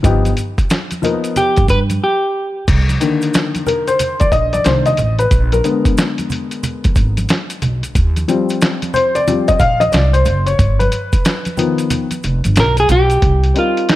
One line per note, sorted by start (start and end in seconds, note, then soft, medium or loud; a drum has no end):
0.03 0.32 G1 loud
0.03 0.29 F3 medium
0.03 0.30 B3 medium
0.03 0.30 D#4 medium
0.03 0.30 G4 loud
0.03 kick loud
0.03 closed hi-hat medium
0.03 maracas medium
0.25 closed hi-hat medium
0.25 high conga medium
0.25 maracas soft
0.37 closed hi-hat medium
0.37 maracas soft
0.58 kick medium
0.58 closed hi-hat medium
0.58 maracas soft
0.70 snare loud
0.70 closed hi-hat medium
0.70 maracas medium
0.91 closed hi-hat medium
0.91 high conga medium
0.91 maracas soft
1.02 1.52 F3 medium
1.02 1.11 A#3 medium
1.02 1.53 D#4 medium
1.02 1.54 A#4 medium
1.02 closed hi-hat medium
1.02 low conga medium
1.02 maracas soft
1.09 1.56 B3 medium
1.24 closed hi-hat soft
1.24 maracas medium
1.36 1.70 G4 medium
1.36 closed hi-hat medium
1.36 low conga medium
1.36 maracas medium
1.56 1.67 G1 medium
1.56 kick medium
1.56 closed hi-hat soft
1.56 high conga medium
1.56 maracas soft
1.68 1.97 G2 loud
1.68 1.79 B4 loud
1.68 kick medium
1.68 closed hi-hat medium
1.68 maracas medium
1.90 closed hi-hat medium
1.90 high conga medium
1.90 maracas soft
2.04 2.65 G4 medium
2.68 2.96 C2 loud
2.68 kick loud
2.68 closed hi-hat medium
2.68 crash loud
2.68 maracas medium
2.89 closed hi-hat medium
2.89 high conga medium
2.89 maracas soft
3.00 5.28 D3 medium
3.00 4.63 D#3 medium
3.00 4.63 A#3 medium
3.00 closed hi-hat medium
3.00 maracas soft
3.22 closed hi-hat medium
3.22 maracas soft
3.34 snare loud
3.34 closed hi-hat medium
3.34 maracas medium
3.55 closed hi-hat medium
3.55 high conga medium
3.55 maracas soft
3.67 3.88 A#4 medium
3.67 closed hi-hat medium
3.67 low conga medium
3.67 maracas soft
3.87 4.22 C5 medium
3.87 closed hi-hat soft
3.87 maracas medium
3.99 closed hi-hat medium
3.99 low conga medium
3.99 maracas medium
4.20 4.33 D5 loud
4.20 kick medium
4.20 closed hi-hat soft
4.20 high conga soft
4.20 maracas medium
4.32 4.60 A#1 medium
4.32 4.54 D#5 loud
4.32 kick medium
4.32 closed hi-hat medium
4.32 maracas soft
4.53 4.66 D5 loud
4.53 closed hi-hat medium
4.53 high conga medium
4.53 maracas soft
4.64 4.93 C2 medium
4.64 4.95 D#3 soft
4.64 4.95 A#3 soft
4.64 4.95 D4 medium
4.64 4.85 C5 medium
4.64 snare loud
4.64 closed hi-hat medium
4.64 maracas medium
4.86 5.17 D#5 medium
4.86 closed hi-hat medium
4.86 maracas soft
4.97 5.27 A1 loud
4.97 closed hi-hat medium
4.97 low conga medium
4.97 maracas soft
5.19 5.53 B4 medium
5.19 closed hi-hat medium
5.19 maracas soft
5.31 5.59 A#1 loud
5.31 kick loud
5.31 closed hi-hat medium
5.31 maracas medium
5.52 7.13 A#4 medium
5.52 closed hi-hat medium
5.52 high conga medium
5.52 maracas soft
5.64 7.91 D3 medium
5.64 7.91 G#3 medium
5.64 7.92 B3 medium
5.64 closed hi-hat medium
5.64 maracas soft
5.85 kick medium
5.85 closed hi-hat medium
5.85 maracas soft
5.97 snare loud
5.97 closed hi-hat medium
5.97 maracas medium
6.18 closed hi-hat medium
6.18 high conga medium
6.18 maracas soft
6.30 closed hi-hat medium
6.30 low conga medium
6.30 maracas soft
6.51 closed hi-hat soft
6.51 maracas medium
6.63 closed hi-hat medium
6.63 low conga medium
6.63 maracas medium
6.84 kick medium
6.84 closed hi-hat medium
6.84 high conga soft
6.84 maracas soft
6.95 7.24 G#1 medium
6.95 kick medium
6.95 closed hi-hat medium
6.95 maracas soft
7.17 closed hi-hat medium
7.17 high conga medium
7.17 maracas soft
7.29 snare loud
7.29 closed hi-hat medium
7.29 maracas medium
7.50 closed hi-hat medium
7.50 maracas soft
7.62 7.80 B1 medium
7.62 closed hi-hat medium
7.62 low conga medium
7.62 maracas soft
7.83 closed hi-hat medium
7.83 maracas medium
7.95 8.23 D#2 loud
7.95 kick loud
7.95 closed hi-hat medium
7.95 maracas medium
8.16 closed hi-hat medium
8.16 high conga medium
8.16 maracas soft
8.28 9.23 F3 medium
8.28 9.23 G3 medium
8.28 9.24 C4 medium
8.28 closed hi-hat medium
8.28 maracas soft
8.49 closed hi-hat medium
8.49 maracas soft
8.61 snare loud
8.61 closed hi-hat medium
8.61 maracas medium
8.82 closed hi-hat medium
8.82 high conga medium
8.82 maracas soft
8.94 9.16 C5 loud
8.94 closed hi-hat medium
8.94 low conga medium
8.94 maracas soft
9.15 9.49 D5 loud
9.15 closed hi-hat medium
9.15 maracas medium
9.27 9.57 F3 medium
9.27 9.57 G3 soft
9.27 9.57 C4 medium
9.27 closed hi-hat loud
9.27 low conga medium
9.27 maracas medium
9.48 9.60 D#5 medium
9.48 kick medium
9.48 closed hi-hat medium
9.48 high conga medium
9.48 maracas medium
9.59 9.88 A#1 loud
9.59 9.79 F5 loud
9.59 kick medium
9.59 closed hi-hat medium
9.59 maracas medium
9.80 9.92 D#5 loud
9.80 closed hi-hat medium
9.80 high conga medium
9.80 maracas soft
9.92 10.21 C2 loud
9.92 10.14 D5 medium
9.92 snare loud
9.92 closed hi-hat medium
9.92 maracas medium
10.13 10.44 C5 medium
10.13 closed hi-hat medium
10.13 maracas soft
10.25 10.54 F#1 loud
10.25 closed hi-hat medium
10.25 low conga medium
10.25 maracas soft
10.46 10.81 C#5 medium
10.46 closed hi-hat medium
10.46 maracas medium
10.59 10.87 G1 loud
10.59 kick loud
10.59 closed hi-hat medium
10.59 maracas medium
10.79 12.41 B4 medium
10.79 closed hi-hat medium
10.79 high conga medium
10.79 maracas soft
10.92 closed hi-hat medium
10.92 maracas soft
11.13 kick medium
11.13 closed hi-hat medium
11.13 maracas soft
11.25 snare loud
11.25 closed hi-hat medium
11.25 maracas medium
11.45 closed hi-hat medium
11.45 high conga medium
11.45 maracas soft
11.57 12.05 D#3 medium
11.57 12.05 F3 medium
11.57 12.06 B3 medium
11.57 closed hi-hat medium
11.57 low conga medium
11.57 maracas soft
11.78 closed hi-hat medium
11.78 maracas medium
11.90 closed hi-hat medium
11.90 low conga medium
11.90 maracas medium
12.11 closed hi-hat medium
12.11 high conga soft
12.11 maracas medium
12.23 12.42 F1 medium
12.23 closed hi-hat medium
12.23 maracas soft
12.44 12.58 G1 medium
12.44 closed hi-hat medium
12.44 high conga medium
12.44 maracas soft
12.56 12.85 B1 loud
12.56 snare loud
12.56 closed hi-hat medium
12.56 maracas medium
12.60 12.79 A#4 medium
12.77 12.91 G#4 loud
12.77 closed hi-hat medium
12.77 maracas soft
12.89 13.18 B1 loud
12.89 13.59 G4 loud
12.89 closed hi-hat medium
12.89 low conga medium
12.89 maracas soft
13.10 closed hi-hat medium
13.10 maracas medium
13.22 13.50 C2 loud
13.22 kick loud
13.22 closed hi-hat medium
13.44 closed hi-hat medium
13.54 13.96 G3 medium
13.54 13.96 C4 medium
13.54 13.96 D#4 medium
13.54 13.96 A#4 medium
13.54 closed hi-hat medium
13.59 13.91 F4 medium
13.77 closed hi-hat medium
13.89 13.96 D#4 medium
13.89 snare loud
13.89 closed hi-hat medium